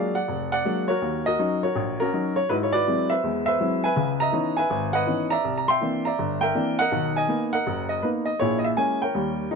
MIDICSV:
0, 0, Header, 1, 2, 480
1, 0, Start_track
1, 0, Tempo, 369686
1, 1317, Time_signature, 4, 2, 24, 8
1, 12405, End_track
2, 0, Start_track
2, 0, Title_t, "Upright piano"
2, 0, Program_c, 0, 0
2, 0, Note_on_c, 0, 54, 53
2, 0, Note_on_c, 0, 56, 49
2, 0, Note_on_c, 0, 58, 45
2, 0, Note_on_c, 0, 62, 55
2, 0, Note_on_c, 0, 65, 55
2, 0, Note_on_c, 0, 68, 66
2, 0, Note_on_c, 0, 74, 64
2, 0, Note_on_c, 0, 77, 86
2, 183, Note_off_c, 0, 74, 0
2, 196, Note_on_c, 0, 78, 73
2, 203, Note_on_c, 0, 74, 48
2, 209, Note_off_c, 0, 54, 0
2, 210, Note_off_c, 0, 56, 0
2, 211, Note_off_c, 0, 77, 0
2, 214, Note_off_c, 0, 58, 0
2, 216, Note_off_c, 0, 62, 0
2, 318, Note_off_c, 0, 65, 0
2, 367, Note_on_c, 0, 29, 61
2, 634, Note_off_c, 0, 68, 0
2, 658, Note_off_c, 0, 78, 0
2, 677, Note_off_c, 0, 74, 0
2, 678, Note_on_c, 0, 78, 92
2, 696, Note_on_c, 0, 74, 66
2, 777, Note_off_c, 0, 29, 0
2, 842, Note_on_c, 0, 56, 49
2, 848, Note_on_c, 0, 54, 56
2, 848, Note_on_c, 0, 58, 48
2, 853, Note_on_c, 0, 62, 64
2, 1140, Note_on_c, 0, 73, 85
2, 1160, Note_on_c, 0, 70, 61
2, 1166, Note_on_c, 0, 66, 61
2, 1167, Note_off_c, 0, 56, 0
2, 1167, Note_off_c, 0, 78, 0
2, 1170, Note_off_c, 0, 54, 0
2, 1170, Note_off_c, 0, 58, 0
2, 1173, Note_off_c, 0, 62, 0
2, 1286, Note_off_c, 0, 74, 0
2, 1322, Note_on_c, 0, 39, 61
2, 1631, Note_off_c, 0, 70, 0
2, 1633, Note_off_c, 0, 66, 0
2, 1637, Note_on_c, 0, 75, 103
2, 1638, Note_off_c, 0, 73, 0
2, 1651, Note_on_c, 0, 70, 63
2, 1652, Note_on_c, 0, 66, 65
2, 1734, Note_off_c, 0, 39, 0
2, 1802, Note_on_c, 0, 54, 52
2, 1808, Note_on_c, 0, 61, 46
2, 1814, Note_on_c, 0, 63, 60
2, 2078, Note_off_c, 0, 75, 0
2, 2112, Note_off_c, 0, 66, 0
2, 2112, Note_off_c, 0, 70, 0
2, 2118, Note_on_c, 0, 73, 74
2, 2127, Note_off_c, 0, 54, 0
2, 2130, Note_off_c, 0, 61, 0
2, 2131, Note_on_c, 0, 70, 51
2, 2132, Note_on_c, 0, 66, 55
2, 2133, Note_off_c, 0, 63, 0
2, 2279, Note_on_c, 0, 34, 65
2, 2559, Note_off_c, 0, 73, 0
2, 2575, Note_off_c, 0, 70, 0
2, 2592, Note_off_c, 0, 66, 0
2, 2595, Note_on_c, 0, 70, 91
2, 2611, Note_on_c, 0, 66, 59
2, 2616, Note_on_c, 0, 61, 60
2, 2692, Note_off_c, 0, 34, 0
2, 2752, Note_off_c, 0, 61, 0
2, 2766, Note_on_c, 0, 54, 53
2, 2772, Note_on_c, 0, 61, 47
2, 2775, Note_on_c, 0, 63, 53
2, 3064, Note_on_c, 0, 73, 82
2, 3085, Note_off_c, 0, 70, 0
2, 3088, Note_off_c, 0, 54, 0
2, 3091, Note_off_c, 0, 61, 0
2, 3093, Note_off_c, 0, 63, 0
2, 3203, Note_off_c, 0, 66, 0
2, 3222, Note_off_c, 0, 73, 0
2, 3238, Note_on_c, 0, 71, 89
2, 3245, Note_on_c, 0, 44, 62
2, 3252, Note_on_c, 0, 66, 54
2, 3256, Note_on_c, 0, 64, 57
2, 3303, Note_off_c, 0, 71, 0
2, 3416, Note_on_c, 0, 73, 68
2, 3535, Note_off_c, 0, 66, 0
2, 3538, Note_on_c, 0, 74, 111
2, 3539, Note_off_c, 0, 73, 0
2, 3555, Note_on_c, 0, 66, 60
2, 3555, Note_on_c, 0, 71, 68
2, 3655, Note_off_c, 0, 44, 0
2, 3717, Note_off_c, 0, 64, 0
2, 3727, Note_on_c, 0, 54, 45
2, 3730, Note_on_c, 0, 56, 47
2, 3735, Note_on_c, 0, 60, 47
2, 3737, Note_on_c, 0, 64, 51
2, 4020, Note_on_c, 0, 76, 94
2, 4024, Note_off_c, 0, 71, 0
2, 4036, Note_off_c, 0, 74, 0
2, 4043, Note_on_c, 0, 71, 54
2, 4049, Note_off_c, 0, 54, 0
2, 4049, Note_on_c, 0, 72, 52
2, 4050, Note_off_c, 0, 56, 0
2, 4053, Note_off_c, 0, 60, 0
2, 4054, Note_off_c, 0, 64, 0
2, 4200, Note_on_c, 0, 40, 57
2, 4203, Note_on_c, 0, 56, 59
2, 4458, Note_off_c, 0, 66, 0
2, 4472, Note_off_c, 0, 76, 0
2, 4491, Note_on_c, 0, 76, 102
2, 4497, Note_off_c, 0, 71, 0
2, 4497, Note_off_c, 0, 72, 0
2, 4516, Note_on_c, 0, 72, 62
2, 4517, Note_on_c, 0, 71, 64
2, 4612, Note_off_c, 0, 40, 0
2, 4614, Note_off_c, 0, 56, 0
2, 4672, Note_on_c, 0, 54, 47
2, 4673, Note_on_c, 0, 56, 42
2, 4682, Note_on_c, 0, 60, 46
2, 4685, Note_on_c, 0, 64, 55
2, 4979, Note_off_c, 0, 76, 0
2, 4982, Note_on_c, 0, 80, 98
2, 4984, Note_off_c, 0, 71, 0
2, 4999, Note_on_c, 0, 76, 65
2, 5001, Note_off_c, 0, 54, 0
2, 5002, Note_off_c, 0, 56, 0
2, 5004, Note_on_c, 0, 71, 69
2, 5006, Note_off_c, 0, 60, 0
2, 5008, Note_off_c, 0, 64, 0
2, 5114, Note_off_c, 0, 72, 0
2, 5144, Note_on_c, 0, 37, 60
2, 5149, Note_on_c, 0, 49, 51
2, 5455, Note_on_c, 0, 82, 105
2, 5462, Note_off_c, 0, 76, 0
2, 5478, Note_off_c, 0, 80, 0
2, 5481, Note_on_c, 0, 76, 64
2, 5482, Note_on_c, 0, 75, 75
2, 5564, Note_off_c, 0, 37, 0
2, 5566, Note_off_c, 0, 49, 0
2, 5612, Note_on_c, 0, 52, 48
2, 5621, Note_on_c, 0, 59, 45
2, 5621, Note_on_c, 0, 61, 46
2, 5627, Note_on_c, 0, 63, 56
2, 5902, Note_off_c, 0, 71, 0
2, 5929, Note_on_c, 0, 80, 96
2, 5933, Note_off_c, 0, 76, 0
2, 5951, Note_off_c, 0, 52, 0
2, 5952, Note_on_c, 0, 76, 60
2, 5955, Note_off_c, 0, 59, 0
2, 5955, Note_off_c, 0, 61, 0
2, 5955, Note_off_c, 0, 82, 0
2, 5958, Note_off_c, 0, 63, 0
2, 5963, Note_on_c, 0, 71, 65
2, 6106, Note_on_c, 0, 32, 71
2, 6382, Note_off_c, 0, 75, 0
2, 6383, Note_off_c, 0, 80, 0
2, 6403, Note_on_c, 0, 78, 88
2, 6409, Note_off_c, 0, 71, 0
2, 6428, Note_on_c, 0, 71, 74
2, 6428, Note_on_c, 0, 75, 74
2, 6525, Note_off_c, 0, 32, 0
2, 6578, Note_on_c, 0, 52, 54
2, 6584, Note_on_c, 0, 59, 47
2, 6588, Note_on_c, 0, 61, 46
2, 6591, Note_on_c, 0, 63, 51
2, 6857, Note_off_c, 0, 76, 0
2, 6887, Note_on_c, 0, 82, 102
2, 6905, Note_on_c, 0, 74, 65
2, 6909, Note_off_c, 0, 78, 0
2, 6909, Note_on_c, 0, 76, 74
2, 6914, Note_off_c, 0, 52, 0
2, 6917, Note_off_c, 0, 59, 0
2, 6919, Note_off_c, 0, 61, 0
2, 6920, Note_off_c, 0, 63, 0
2, 7030, Note_off_c, 0, 71, 0
2, 7030, Note_off_c, 0, 75, 0
2, 7071, Note_on_c, 0, 36, 58
2, 7219, Note_off_c, 0, 82, 0
2, 7239, Note_on_c, 0, 82, 73
2, 7370, Note_off_c, 0, 82, 0
2, 7378, Note_on_c, 0, 84, 118
2, 7383, Note_off_c, 0, 76, 0
2, 7398, Note_on_c, 0, 79, 72
2, 7402, Note_on_c, 0, 76, 67
2, 7487, Note_off_c, 0, 36, 0
2, 7542, Note_on_c, 0, 52, 51
2, 7545, Note_on_c, 0, 58, 45
2, 7549, Note_on_c, 0, 60, 44
2, 7555, Note_on_c, 0, 62, 52
2, 7813, Note_off_c, 0, 74, 0
2, 7856, Note_on_c, 0, 82, 82
2, 7858, Note_off_c, 0, 76, 0
2, 7876, Note_off_c, 0, 52, 0
2, 7876, Note_off_c, 0, 84, 0
2, 7878, Note_off_c, 0, 58, 0
2, 7878, Note_on_c, 0, 76, 61
2, 7880, Note_off_c, 0, 60, 0
2, 7882, Note_off_c, 0, 62, 0
2, 7883, Note_on_c, 0, 74, 62
2, 8037, Note_on_c, 0, 31, 62
2, 8300, Note_off_c, 0, 79, 0
2, 8307, Note_off_c, 0, 82, 0
2, 8321, Note_on_c, 0, 79, 96
2, 8324, Note_off_c, 0, 76, 0
2, 8344, Note_on_c, 0, 76, 65
2, 8349, Note_on_c, 0, 70, 71
2, 8451, Note_off_c, 0, 31, 0
2, 8501, Note_on_c, 0, 52, 55
2, 8504, Note_on_c, 0, 58, 52
2, 8507, Note_on_c, 0, 60, 43
2, 8513, Note_on_c, 0, 62, 62
2, 8783, Note_off_c, 0, 74, 0
2, 8814, Note_on_c, 0, 78, 112
2, 8822, Note_off_c, 0, 70, 0
2, 8828, Note_off_c, 0, 79, 0
2, 8836, Note_off_c, 0, 52, 0
2, 8838, Note_off_c, 0, 58, 0
2, 8838, Note_on_c, 0, 75, 69
2, 8839, Note_off_c, 0, 60, 0
2, 8842, Note_off_c, 0, 62, 0
2, 8842, Note_on_c, 0, 70, 66
2, 8948, Note_off_c, 0, 76, 0
2, 8981, Note_on_c, 0, 35, 63
2, 8982, Note_on_c, 0, 51, 55
2, 9266, Note_off_c, 0, 78, 0
2, 9300, Note_off_c, 0, 75, 0
2, 9302, Note_on_c, 0, 80, 98
2, 9319, Note_on_c, 0, 75, 79
2, 9402, Note_off_c, 0, 35, 0
2, 9403, Note_off_c, 0, 51, 0
2, 9460, Note_on_c, 0, 58, 54
2, 9461, Note_on_c, 0, 59, 49
2, 9466, Note_on_c, 0, 63, 56
2, 9742, Note_off_c, 0, 70, 0
2, 9750, Note_off_c, 0, 80, 0
2, 9774, Note_on_c, 0, 78, 92
2, 9776, Note_off_c, 0, 75, 0
2, 9795, Note_on_c, 0, 75, 53
2, 9796, Note_off_c, 0, 58, 0
2, 9796, Note_off_c, 0, 59, 0
2, 9797, Note_on_c, 0, 70, 58
2, 9799, Note_off_c, 0, 63, 0
2, 9957, Note_on_c, 0, 30, 64
2, 10227, Note_off_c, 0, 75, 0
2, 10247, Note_on_c, 0, 75, 81
2, 10275, Note_off_c, 0, 78, 0
2, 10372, Note_off_c, 0, 30, 0
2, 10420, Note_on_c, 0, 71, 69
2, 10431, Note_off_c, 0, 75, 0
2, 10431, Note_on_c, 0, 58, 55
2, 10434, Note_on_c, 0, 59, 47
2, 10443, Note_on_c, 0, 63, 55
2, 10492, Note_off_c, 0, 71, 0
2, 10701, Note_off_c, 0, 70, 0
2, 10719, Note_on_c, 0, 75, 80
2, 10762, Note_off_c, 0, 58, 0
2, 10763, Note_off_c, 0, 59, 0
2, 10768, Note_off_c, 0, 63, 0
2, 10899, Note_on_c, 0, 73, 85
2, 10908, Note_off_c, 0, 75, 0
2, 10918, Note_on_c, 0, 46, 65
2, 10919, Note_on_c, 0, 34, 57
2, 10929, Note_on_c, 0, 64, 60
2, 10930, Note_on_c, 0, 68, 61
2, 11125, Note_off_c, 0, 73, 0
2, 11151, Note_on_c, 0, 75, 65
2, 11224, Note_on_c, 0, 76, 85
2, 11229, Note_off_c, 0, 75, 0
2, 11289, Note_off_c, 0, 76, 0
2, 11333, Note_off_c, 0, 46, 0
2, 11334, Note_off_c, 0, 34, 0
2, 11387, Note_on_c, 0, 80, 98
2, 11391, Note_on_c, 0, 56, 49
2, 11395, Note_on_c, 0, 58, 46
2, 11402, Note_on_c, 0, 61, 60
2, 11682, Note_off_c, 0, 80, 0
2, 11709, Note_on_c, 0, 79, 75
2, 11723, Note_off_c, 0, 56, 0
2, 11725, Note_off_c, 0, 58, 0
2, 11728, Note_off_c, 0, 61, 0
2, 11732, Note_on_c, 0, 70, 51
2, 11734, Note_on_c, 0, 73, 53
2, 11833, Note_off_c, 0, 64, 0
2, 11833, Note_off_c, 0, 68, 0
2, 11875, Note_on_c, 0, 55, 60
2, 11877, Note_on_c, 0, 39, 67
2, 12293, Note_off_c, 0, 55, 0
2, 12294, Note_off_c, 0, 39, 0
2, 12314, Note_off_c, 0, 79, 0
2, 12348, Note_on_c, 0, 63, 70
2, 12357, Note_on_c, 0, 52, 53
2, 12359, Note_on_c, 0, 55, 49
2, 12364, Note_on_c, 0, 61, 48
2, 12405, Note_off_c, 0, 52, 0
2, 12405, Note_off_c, 0, 55, 0
2, 12405, Note_off_c, 0, 61, 0
2, 12405, Note_off_c, 0, 63, 0
2, 12405, Note_off_c, 0, 70, 0
2, 12405, Note_off_c, 0, 73, 0
2, 12405, End_track
0, 0, End_of_file